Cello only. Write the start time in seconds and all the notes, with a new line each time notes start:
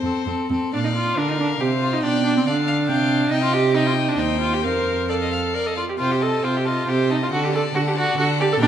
0.03 F2
0.27 F2
0.50 F2
0.73 A#2
1.18 D3
1.61 C3
2.03 B2
2.46 D3
2.89 C3
3.31 C3
4.18 D#2
4.64 F2
5.99 C3
6.43 C3
6.88 C3
7.32 D3
7.75 D3
8.18 D3
8.61 A#2